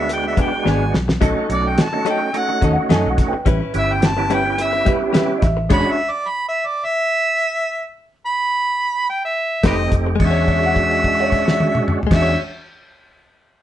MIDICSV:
0, 0, Header, 1, 9, 480
1, 0, Start_track
1, 0, Tempo, 561272
1, 1039, Time_signature, 4, 2, 24, 8
1, 11652, End_track
2, 0, Start_track
2, 0, Title_t, "Harmonica"
2, 0, Program_c, 0, 22
2, 0, Note_on_c, 0, 76, 83
2, 86, Note_off_c, 0, 76, 0
2, 109, Note_on_c, 0, 79, 84
2, 213, Note_off_c, 0, 79, 0
2, 233, Note_on_c, 0, 76, 71
2, 325, Note_off_c, 0, 76, 0
2, 351, Note_on_c, 0, 79, 82
2, 585, Note_on_c, 0, 80, 89
2, 598, Note_off_c, 0, 79, 0
2, 805, Note_off_c, 0, 80, 0
2, 1305, Note_on_c, 0, 74, 94
2, 1436, Note_on_c, 0, 79, 83
2, 1449, Note_off_c, 0, 74, 0
2, 1551, Note_on_c, 0, 81, 75
2, 1564, Note_off_c, 0, 79, 0
2, 1768, Note_off_c, 0, 81, 0
2, 1793, Note_on_c, 0, 79, 87
2, 2034, Note_on_c, 0, 78, 98
2, 2047, Note_off_c, 0, 79, 0
2, 2250, Note_off_c, 0, 78, 0
2, 3235, Note_on_c, 0, 76, 99
2, 3362, Note_on_c, 0, 79, 87
2, 3375, Note_off_c, 0, 76, 0
2, 3471, Note_on_c, 0, 81, 77
2, 3484, Note_off_c, 0, 79, 0
2, 3690, Note_off_c, 0, 81, 0
2, 3712, Note_on_c, 0, 79, 92
2, 3959, Note_on_c, 0, 76, 101
2, 3972, Note_off_c, 0, 79, 0
2, 4174, Note_off_c, 0, 76, 0
2, 4899, Note_on_c, 0, 83, 115
2, 5062, Note_on_c, 0, 76, 96
2, 5075, Note_off_c, 0, 83, 0
2, 5226, Note_on_c, 0, 74, 96
2, 5239, Note_off_c, 0, 76, 0
2, 5383, Note_on_c, 0, 83, 104
2, 5395, Note_off_c, 0, 74, 0
2, 5528, Note_off_c, 0, 83, 0
2, 5542, Note_on_c, 0, 76, 89
2, 5698, Note_on_c, 0, 74, 95
2, 5711, Note_off_c, 0, 76, 0
2, 5857, Note_on_c, 0, 76, 117
2, 5870, Note_off_c, 0, 74, 0
2, 6782, Note_off_c, 0, 76, 0
2, 7062, Note_on_c, 0, 83, 113
2, 7752, Note_off_c, 0, 83, 0
2, 7779, Note_on_c, 0, 79, 97
2, 7890, Note_off_c, 0, 79, 0
2, 7909, Note_on_c, 0, 76, 82
2, 8243, Note_off_c, 0, 76, 0
2, 8263, Note_on_c, 0, 67, 73
2, 8263, Note_on_c, 0, 71, 73
2, 8263, Note_on_c, 0, 75, 104
2, 8337, Note_off_c, 0, 71, 0
2, 8339, Note_off_c, 0, 67, 0
2, 8486, Note_off_c, 0, 75, 0
2, 8754, Note_on_c, 0, 76, 108
2, 10284, Note_off_c, 0, 76, 0
2, 10390, Note_on_c, 0, 76, 105
2, 10585, Note_off_c, 0, 76, 0
2, 11652, End_track
3, 0, Start_track
3, 0, Title_t, "Upright piano"
3, 0, Program_c, 1, 0
3, 2298, Note_on_c, 1, 77, 64
3, 2328, Note_off_c, 1, 77, 0
3, 2335, Note_on_c, 1, 78, 89
3, 2483, Note_off_c, 1, 78, 0
3, 2497, Note_on_c, 1, 80, 78
3, 2644, Note_off_c, 1, 80, 0
3, 2651, Note_on_c, 1, 78, 72
3, 2801, Note_off_c, 1, 78, 0
3, 2807, Note_on_c, 1, 71, 73
3, 2808, Note_on_c, 1, 79, 83
3, 3028, Note_off_c, 1, 71, 0
3, 3037, Note_off_c, 1, 79, 0
3, 4132, Note_on_c, 1, 75, 57
3, 4163, Note_off_c, 1, 75, 0
3, 4167, Note_on_c, 1, 67, 73
3, 4171, Note_on_c, 1, 76, 79
3, 4388, Note_off_c, 1, 67, 0
3, 4393, Note_off_c, 1, 76, 0
3, 4400, Note_on_c, 1, 67, 77
3, 4406, Note_on_c, 1, 76, 80
3, 4600, Note_on_c, 1, 75, 64
3, 4624, Note_off_c, 1, 67, 0
3, 4627, Note_off_c, 1, 76, 0
3, 4632, Note_off_c, 1, 75, 0
3, 4639, Note_on_c, 1, 76, 86
3, 5070, Note_off_c, 1, 76, 0
3, 8973, Note_on_c, 1, 76, 81
3, 9086, Note_off_c, 1, 76, 0
3, 9113, Note_on_c, 1, 78, 80
3, 9567, Note_off_c, 1, 78, 0
3, 9583, Note_on_c, 1, 73, 85
3, 9919, Note_off_c, 1, 73, 0
3, 9934, Note_on_c, 1, 76, 84
3, 10297, Note_off_c, 1, 76, 0
3, 10376, Note_on_c, 1, 76, 80
3, 10578, Note_off_c, 1, 76, 0
3, 11652, End_track
4, 0, Start_track
4, 0, Title_t, "Clean electric guitar"
4, 0, Program_c, 2, 27
4, 312, Note_on_c, 2, 54, 53
4, 323, Note_on_c, 2, 59, 62
4, 330, Note_on_c, 2, 62, 65
4, 338, Note_on_c, 2, 68, 58
4, 434, Note_off_c, 2, 68, 0
4, 442, Note_off_c, 2, 54, 0
4, 442, Note_off_c, 2, 62, 0
4, 448, Note_off_c, 2, 59, 0
4, 556, Note_on_c, 2, 54, 67
4, 562, Note_on_c, 2, 59, 77
4, 570, Note_on_c, 2, 62, 82
4, 574, Note_on_c, 2, 68, 84
4, 707, Note_off_c, 2, 54, 0
4, 710, Note_off_c, 2, 59, 0
4, 714, Note_off_c, 2, 62, 0
4, 716, Note_off_c, 2, 68, 0
4, 1033, Note_on_c, 2, 54, 81
4, 1040, Note_on_c, 2, 61, 92
4, 1047, Note_on_c, 2, 63, 97
4, 1051, Note_on_c, 2, 69, 90
4, 1149, Note_off_c, 2, 69, 0
4, 1160, Note_on_c, 2, 69, 58
4, 1163, Note_off_c, 2, 54, 0
4, 1164, Note_off_c, 2, 63, 0
4, 1166, Note_off_c, 2, 61, 0
4, 1174, Note_on_c, 2, 63, 53
4, 1184, Note_on_c, 2, 61, 44
4, 1275, Note_off_c, 2, 61, 0
4, 1276, Note_off_c, 2, 69, 0
4, 1280, Note_off_c, 2, 63, 0
4, 1753, Note_on_c, 2, 54, 70
4, 1761, Note_on_c, 2, 61, 80
4, 1766, Note_on_c, 2, 63, 89
4, 1771, Note_on_c, 2, 69, 77
4, 1875, Note_off_c, 2, 69, 0
4, 1883, Note_off_c, 2, 54, 0
4, 1883, Note_off_c, 2, 63, 0
4, 1887, Note_off_c, 2, 61, 0
4, 2236, Note_on_c, 2, 54, 54
4, 2245, Note_on_c, 2, 61, 56
4, 2255, Note_on_c, 2, 63, 65
4, 2260, Note_on_c, 2, 69, 59
4, 2352, Note_off_c, 2, 69, 0
4, 2361, Note_off_c, 2, 63, 0
4, 2365, Note_off_c, 2, 54, 0
4, 2366, Note_off_c, 2, 61, 0
4, 2474, Note_on_c, 2, 54, 89
4, 2482, Note_on_c, 2, 61, 83
4, 2486, Note_on_c, 2, 63, 83
4, 2493, Note_on_c, 2, 69, 95
4, 2627, Note_off_c, 2, 54, 0
4, 2631, Note_off_c, 2, 61, 0
4, 2633, Note_off_c, 2, 63, 0
4, 2636, Note_off_c, 2, 69, 0
4, 2956, Note_on_c, 2, 55, 80
4, 2963, Note_on_c, 2, 61, 87
4, 2968, Note_on_c, 2, 64, 93
4, 2976, Note_on_c, 2, 71, 90
4, 3072, Note_off_c, 2, 71, 0
4, 3082, Note_on_c, 2, 71, 57
4, 3084, Note_off_c, 2, 64, 0
4, 3085, Note_off_c, 2, 55, 0
4, 3089, Note_off_c, 2, 61, 0
4, 3095, Note_on_c, 2, 64, 50
4, 3104, Note_on_c, 2, 61, 45
4, 3191, Note_off_c, 2, 61, 0
4, 3194, Note_off_c, 2, 64, 0
4, 3196, Note_off_c, 2, 71, 0
4, 3677, Note_on_c, 2, 55, 69
4, 3683, Note_on_c, 2, 61, 76
4, 3689, Note_on_c, 2, 64, 79
4, 3694, Note_on_c, 2, 71, 82
4, 3793, Note_off_c, 2, 71, 0
4, 3800, Note_off_c, 2, 64, 0
4, 3805, Note_off_c, 2, 61, 0
4, 3806, Note_off_c, 2, 55, 0
4, 4150, Note_on_c, 2, 55, 57
4, 4160, Note_on_c, 2, 61, 59
4, 4169, Note_on_c, 2, 64, 62
4, 4174, Note_on_c, 2, 71, 67
4, 4267, Note_off_c, 2, 71, 0
4, 4274, Note_off_c, 2, 64, 0
4, 4281, Note_off_c, 2, 61, 0
4, 4283, Note_off_c, 2, 55, 0
4, 4386, Note_on_c, 2, 55, 83
4, 4394, Note_on_c, 2, 61, 93
4, 4398, Note_on_c, 2, 64, 88
4, 4403, Note_on_c, 2, 71, 97
4, 4544, Note_off_c, 2, 55, 0
4, 4547, Note_off_c, 2, 61, 0
4, 4550, Note_off_c, 2, 64, 0
4, 4552, Note_off_c, 2, 71, 0
4, 4873, Note_on_c, 2, 56, 82
4, 4880, Note_on_c, 2, 62, 89
4, 4887, Note_on_c, 2, 66, 99
4, 4891, Note_on_c, 2, 73, 90
4, 4990, Note_off_c, 2, 73, 0
4, 5000, Note_on_c, 2, 73, 59
4, 5004, Note_off_c, 2, 56, 0
4, 5005, Note_off_c, 2, 66, 0
4, 5008, Note_off_c, 2, 62, 0
4, 5016, Note_on_c, 2, 66, 54
4, 5023, Note_on_c, 2, 62, 49
4, 5118, Note_off_c, 2, 73, 0
4, 5126, Note_off_c, 2, 66, 0
4, 5130, Note_off_c, 2, 62, 0
4, 8240, Note_on_c, 2, 57, 75
4, 8246, Note_on_c, 2, 63, 74
4, 8254, Note_on_c, 2, 67, 81
4, 8257, Note_on_c, 2, 72, 81
4, 8391, Note_off_c, 2, 57, 0
4, 8394, Note_off_c, 2, 63, 0
4, 8398, Note_off_c, 2, 67, 0
4, 8400, Note_off_c, 2, 72, 0
4, 8685, Note_on_c, 2, 56, 88
4, 8777, Note_on_c, 2, 66, 86
4, 8816, Note_on_c, 2, 73, 94
4, 10316, Note_off_c, 2, 56, 0
4, 10319, Note_on_c, 2, 56, 80
4, 10345, Note_off_c, 2, 66, 0
4, 10371, Note_on_c, 2, 62, 78
4, 10396, Note_off_c, 2, 73, 0
4, 10412, Note_on_c, 2, 66, 82
4, 10450, Note_on_c, 2, 73, 88
4, 10555, Note_off_c, 2, 56, 0
4, 10581, Note_off_c, 2, 62, 0
4, 10602, Note_off_c, 2, 66, 0
4, 10621, Note_off_c, 2, 73, 0
4, 11652, End_track
5, 0, Start_track
5, 0, Title_t, "Tonewheel organ"
5, 0, Program_c, 3, 16
5, 0, Note_on_c, 3, 56, 67
5, 0, Note_on_c, 3, 59, 58
5, 0, Note_on_c, 3, 62, 63
5, 0, Note_on_c, 3, 66, 77
5, 834, Note_off_c, 3, 56, 0
5, 834, Note_off_c, 3, 59, 0
5, 837, Note_off_c, 3, 62, 0
5, 838, Note_off_c, 3, 66, 0
5, 1029, Note_on_c, 3, 57, 76
5, 1031, Note_on_c, 3, 61, 69
5, 1033, Note_on_c, 3, 63, 71
5, 1037, Note_on_c, 3, 66, 82
5, 1254, Note_off_c, 3, 57, 0
5, 1255, Note_off_c, 3, 61, 0
5, 1256, Note_off_c, 3, 63, 0
5, 1258, Note_off_c, 3, 66, 0
5, 1269, Note_on_c, 3, 57, 75
5, 1272, Note_on_c, 3, 61, 71
5, 1277, Note_on_c, 3, 63, 67
5, 1278, Note_on_c, 3, 66, 81
5, 1608, Note_off_c, 3, 57, 0
5, 1609, Note_off_c, 3, 61, 0
5, 1611, Note_off_c, 3, 63, 0
5, 1612, Note_off_c, 3, 66, 0
5, 1649, Note_on_c, 3, 57, 75
5, 1651, Note_on_c, 3, 61, 68
5, 1653, Note_on_c, 3, 63, 66
5, 1655, Note_on_c, 3, 66, 82
5, 1971, Note_off_c, 3, 57, 0
5, 1972, Note_off_c, 3, 61, 0
5, 1973, Note_off_c, 3, 63, 0
5, 1974, Note_off_c, 3, 66, 0
5, 1994, Note_on_c, 3, 57, 71
5, 1999, Note_on_c, 3, 61, 63
5, 2003, Note_on_c, 3, 63, 65
5, 2006, Note_on_c, 3, 66, 77
5, 2878, Note_off_c, 3, 57, 0
5, 2880, Note_off_c, 3, 61, 0
5, 2882, Note_off_c, 3, 63, 0
5, 2884, Note_off_c, 3, 66, 0
5, 3197, Note_on_c, 3, 59, 71
5, 3198, Note_on_c, 3, 61, 66
5, 3202, Note_on_c, 3, 64, 66
5, 3205, Note_on_c, 3, 67, 82
5, 3533, Note_off_c, 3, 59, 0
5, 3533, Note_off_c, 3, 61, 0
5, 3535, Note_off_c, 3, 64, 0
5, 3536, Note_off_c, 3, 67, 0
5, 3568, Note_on_c, 3, 59, 82
5, 3572, Note_on_c, 3, 61, 77
5, 3574, Note_on_c, 3, 64, 77
5, 3578, Note_on_c, 3, 67, 89
5, 3786, Note_off_c, 3, 59, 0
5, 3788, Note_off_c, 3, 61, 0
5, 3789, Note_off_c, 3, 64, 0
5, 3791, Note_off_c, 3, 67, 0
5, 3806, Note_on_c, 3, 59, 70
5, 3806, Note_on_c, 3, 61, 64
5, 3807, Note_on_c, 3, 64, 65
5, 3813, Note_on_c, 3, 67, 74
5, 4678, Note_off_c, 3, 61, 0
5, 4679, Note_off_c, 3, 59, 0
5, 4679, Note_off_c, 3, 64, 0
5, 4682, Note_off_c, 3, 67, 0
5, 4865, Note_on_c, 3, 56, 77
5, 4870, Note_on_c, 3, 62, 73
5, 4871, Note_on_c, 3, 61, 75
5, 4875, Note_on_c, 3, 66, 92
5, 5094, Note_off_c, 3, 56, 0
5, 5096, Note_off_c, 3, 62, 0
5, 5097, Note_off_c, 3, 61, 0
5, 5099, Note_off_c, 3, 66, 0
5, 8237, Note_on_c, 3, 57, 69
5, 8239, Note_on_c, 3, 60, 62
5, 8246, Note_on_c, 3, 63, 62
5, 8246, Note_on_c, 3, 67, 78
5, 8680, Note_off_c, 3, 57, 0
5, 8681, Note_off_c, 3, 60, 0
5, 8685, Note_off_c, 3, 63, 0
5, 8685, Note_off_c, 3, 67, 0
5, 8720, Note_on_c, 3, 66, 79
5, 8721, Note_on_c, 3, 61, 66
5, 8722, Note_on_c, 3, 62, 68
5, 8723, Note_on_c, 3, 56, 76
5, 10267, Note_off_c, 3, 66, 0
5, 10268, Note_off_c, 3, 56, 0
5, 10268, Note_off_c, 3, 61, 0
5, 10268, Note_off_c, 3, 62, 0
5, 10354, Note_on_c, 3, 56, 81
5, 10354, Note_on_c, 3, 61, 73
5, 10354, Note_on_c, 3, 66, 83
5, 10357, Note_on_c, 3, 62, 72
5, 10557, Note_off_c, 3, 56, 0
5, 10557, Note_off_c, 3, 61, 0
5, 10557, Note_off_c, 3, 66, 0
5, 10559, Note_off_c, 3, 62, 0
5, 11652, End_track
6, 0, Start_track
6, 0, Title_t, "Fingered electric bass"
6, 0, Program_c, 4, 33
6, 0, Note_on_c, 4, 38, 92
6, 288, Note_off_c, 4, 38, 0
6, 562, Note_on_c, 4, 32, 82
6, 777, Note_off_c, 4, 32, 0
6, 806, Note_on_c, 4, 35, 79
6, 1019, Note_off_c, 4, 35, 0
6, 1038, Note_on_c, 4, 35, 89
6, 1158, Note_off_c, 4, 35, 0
6, 1278, Note_on_c, 4, 35, 83
6, 1504, Note_off_c, 4, 35, 0
6, 2243, Note_on_c, 4, 39, 87
6, 2361, Note_off_c, 4, 39, 0
6, 2483, Note_on_c, 4, 42, 88
6, 2601, Note_off_c, 4, 42, 0
6, 2616, Note_on_c, 4, 35, 84
6, 2718, Note_off_c, 4, 35, 0
6, 2959, Note_on_c, 4, 33, 95
6, 3079, Note_off_c, 4, 33, 0
6, 3200, Note_on_c, 4, 31, 93
6, 4127, Note_off_c, 4, 31, 0
6, 4639, Note_on_c, 4, 33, 96
6, 4866, Note_off_c, 4, 33, 0
6, 4881, Note_on_c, 4, 28, 93
6, 5001, Note_off_c, 4, 28, 0
6, 8240, Note_on_c, 4, 29, 95
6, 8467, Note_off_c, 4, 29, 0
6, 8482, Note_on_c, 4, 29, 90
6, 8708, Note_off_c, 4, 29, 0
6, 8723, Note_on_c, 4, 40, 90
6, 10268, Note_off_c, 4, 40, 0
6, 10356, Note_on_c, 4, 40, 85
6, 10559, Note_off_c, 4, 40, 0
6, 11652, End_track
7, 0, Start_track
7, 0, Title_t, "Muted clean electric guitar strokes"
7, 82, Note_on_c, 9, 29, 41
7, 168, Note_off_c, 9, 29, 0
7, 203, Note_on_c, 9, 29, 42
7, 288, Note_off_c, 9, 29, 0
7, 444, Note_on_c, 9, 29, 46
7, 529, Note_off_c, 9, 29, 0
7, 798, Note_on_c, 9, 29, 40
7, 884, Note_off_c, 9, 29, 0
7, 924, Note_on_c, 9, 29, 48
7, 1010, Note_off_c, 9, 29, 0
7, 1279, Note_on_c, 9, 29, 36
7, 1365, Note_off_c, 9, 29, 0
7, 1649, Note_on_c, 9, 29, 44
7, 1735, Note_off_c, 9, 29, 0
7, 1886, Note_on_c, 9, 29, 45
7, 1971, Note_off_c, 9, 29, 0
7, 1998, Note_on_c, 9, 29, 39
7, 2083, Note_off_c, 9, 29, 0
7, 2126, Note_on_c, 9, 29, 46
7, 2212, Note_off_c, 9, 29, 0
7, 2363, Note_on_c, 9, 29, 51
7, 2448, Note_off_c, 9, 29, 0
7, 2718, Note_on_c, 9, 29, 45
7, 2803, Note_off_c, 9, 29, 0
7, 2849, Note_on_c, 9, 29, 50
7, 2935, Note_off_c, 9, 29, 0
7, 3194, Note_on_c, 9, 29, 39
7, 3280, Note_off_c, 9, 29, 0
7, 3563, Note_on_c, 9, 29, 47
7, 3649, Note_off_c, 9, 29, 0
7, 3803, Note_on_c, 9, 29, 44
7, 3889, Note_off_c, 9, 29, 0
7, 3917, Note_on_c, 9, 29, 38
7, 4003, Note_off_c, 9, 29, 0
7, 4043, Note_on_c, 9, 29, 49
7, 4129, Note_off_c, 9, 29, 0
7, 4277, Note_on_c, 9, 29, 51
7, 4362, Note_off_c, 9, 29, 0
7, 4636, Note_on_c, 9, 29, 48
7, 4721, Note_off_c, 9, 29, 0
7, 4761, Note_on_c, 9, 29, 52
7, 4847, Note_off_c, 9, 29, 0
7, 8482, Note_on_c, 9, 29, 45
7, 8567, Note_off_c, 9, 29, 0
7, 8608, Note_on_c, 9, 29, 47
7, 8693, Note_off_c, 9, 29, 0
7, 11652, End_track
8, 0, Start_track
8, 0, Title_t, "Muted fingered electric bass strokes"
8, 2849, Note_on_c, 9, 29, 36
8, 2935, Note_off_c, 9, 29, 0
8, 11652, End_track
9, 0, Start_track
9, 0, Title_t, "Drums"
9, 80, Note_on_c, 9, 42, 87
9, 166, Note_off_c, 9, 42, 0
9, 319, Note_on_c, 9, 36, 84
9, 319, Note_on_c, 9, 42, 63
9, 405, Note_off_c, 9, 36, 0
9, 405, Note_off_c, 9, 42, 0
9, 569, Note_on_c, 9, 38, 59
9, 654, Note_off_c, 9, 38, 0
9, 807, Note_on_c, 9, 38, 90
9, 892, Note_off_c, 9, 38, 0
9, 932, Note_on_c, 9, 38, 84
9, 1018, Note_off_c, 9, 38, 0
9, 1040, Note_on_c, 9, 36, 108
9, 1040, Note_on_c, 9, 42, 84
9, 1125, Note_off_c, 9, 36, 0
9, 1126, Note_off_c, 9, 42, 0
9, 1281, Note_on_c, 9, 42, 57
9, 1367, Note_off_c, 9, 42, 0
9, 1520, Note_on_c, 9, 42, 80
9, 1526, Note_on_c, 9, 38, 113
9, 1605, Note_off_c, 9, 42, 0
9, 1611, Note_off_c, 9, 38, 0
9, 1759, Note_on_c, 9, 42, 59
9, 1845, Note_off_c, 9, 42, 0
9, 2002, Note_on_c, 9, 42, 77
9, 2087, Note_off_c, 9, 42, 0
9, 2241, Note_on_c, 9, 36, 84
9, 2242, Note_on_c, 9, 42, 63
9, 2326, Note_off_c, 9, 36, 0
9, 2328, Note_off_c, 9, 42, 0
9, 2482, Note_on_c, 9, 42, 77
9, 2488, Note_on_c, 9, 38, 112
9, 2567, Note_off_c, 9, 42, 0
9, 2573, Note_off_c, 9, 38, 0
9, 2720, Note_on_c, 9, 36, 86
9, 2720, Note_on_c, 9, 42, 62
9, 2726, Note_on_c, 9, 38, 34
9, 2806, Note_off_c, 9, 36, 0
9, 2806, Note_off_c, 9, 42, 0
9, 2812, Note_off_c, 9, 38, 0
9, 2958, Note_on_c, 9, 42, 83
9, 2960, Note_on_c, 9, 36, 113
9, 3044, Note_off_c, 9, 42, 0
9, 3046, Note_off_c, 9, 36, 0
9, 3198, Note_on_c, 9, 42, 61
9, 3284, Note_off_c, 9, 42, 0
9, 3440, Note_on_c, 9, 42, 88
9, 3446, Note_on_c, 9, 38, 114
9, 3525, Note_off_c, 9, 42, 0
9, 3531, Note_off_c, 9, 38, 0
9, 3681, Note_on_c, 9, 42, 64
9, 3766, Note_off_c, 9, 42, 0
9, 3921, Note_on_c, 9, 42, 90
9, 4006, Note_off_c, 9, 42, 0
9, 4159, Note_on_c, 9, 42, 64
9, 4161, Note_on_c, 9, 36, 86
9, 4245, Note_off_c, 9, 42, 0
9, 4246, Note_off_c, 9, 36, 0
9, 4398, Note_on_c, 9, 42, 84
9, 4404, Note_on_c, 9, 38, 106
9, 4484, Note_off_c, 9, 42, 0
9, 4490, Note_off_c, 9, 38, 0
9, 4637, Note_on_c, 9, 42, 61
9, 4640, Note_on_c, 9, 36, 89
9, 4643, Note_on_c, 9, 38, 30
9, 4723, Note_off_c, 9, 42, 0
9, 4725, Note_off_c, 9, 36, 0
9, 4729, Note_off_c, 9, 38, 0
9, 4877, Note_on_c, 9, 42, 84
9, 4877, Note_on_c, 9, 49, 80
9, 4879, Note_on_c, 9, 36, 108
9, 4962, Note_off_c, 9, 42, 0
9, 4962, Note_off_c, 9, 49, 0
9, 4965, Note_off_c, 9, 36, 0
9, 8239, Note_on_c, 9, 42, 80
9, 8241, Note_on_c, 9, 36, 87
9, 8245, Note_on_c, 9, 38, 116
9, 8325, Note_off_c, 9, 42, 0
9, 8327, Note_off_c, 9, 36, 0
9, 8331, Note_off_c, 9, 38, 0
9, 8481, Note_on_c, 9, 42, 60
9, 8482, Note_on_c, 9, 36, 82
9, 8567, Note_off_c, 9, 36, 0
9, 8567, Note_off_c, 9, 42, 0
9, 8721, Note_on_c, 9, 49, 84
9, 8722, Note_on_c, 9, 36, 99
9, 8807, Note_off_c, 9, 49, 0
9, 8808, Note_off_c, 9, 36, 0
9, 8962, Note_on_c, 9, 36, 62
9, 8962, Note_on_c, 9, 49, 42
9, 9047, Note_off_c, 9, 36, 0
9, 9047, Note_off_c, 9, 49, 0
9, 9088, Note_on_c, 9, 57, 45
9, 9174, Note_off_c, 9, 57, 0
9, 9203, Note_on_c, 9, 36, 64
9, 9205, Note_on_c, 9, 49, 48
9, 9288, Note_off_c, 9, 36, 0
9, 9290, Note_off_c, 9, 49, 0
9, 9331, Note_on_c, 9, 57, 46
9, 9416, Note_off_c, 9, 57, 0
9, 9443, Note_on_c, 9, 36, 63
9, 9444, Note_on_c, 9, 49, 49
9, 9528, Note_off_c, 9, 36, 0
9, 9529, Note_off_c, 9, 49, 0
9, 9571, Note_on_c, 9, 57, 50
9, 9656, Note_off_c, 9, 57, 0
9, 9683, Note_on_c, 9, 36, 66
9, 9684, Note_on_c, 9, 49, 48
9, 9768, Note_off_c, 9, 36, 0
9, 9770, Note_off_c, 9, 49, 0
9, 9816, Note_on_c, 9, 38, 94
9, 9901, Note_off_c, 9, 38, 0
9, 9923, Note_on_c, 9, 48, 95
9, 10009, Note_off_c, 9, 48, 0
9, 10048, Note_on_c, 9, 47, 96
9, 10134, Note_off_c, 9, 47, 0
9, 10159, Note_on_c, 9, 45, 97
9, 10244, Note_off_c, 9, 45, 0
9, 10287, Note_on_c, 9, 43, 96
9, 10356, Note_on_c, 9, 49, 102
9, 10357, Note_on_c, 9, 36, 107
9, 10362, Note_on_c, 9, 38, 95
9, 10373, Note_off_c, 9, 43, 0
9, 10441, Note_off_c, 9, 49, 0
9, 10442, Note_off_c, 9, 36, 0
9, 10447, Note_off_c, 9, 38, 0
9, 11652, End_track
0, 0, End_of_file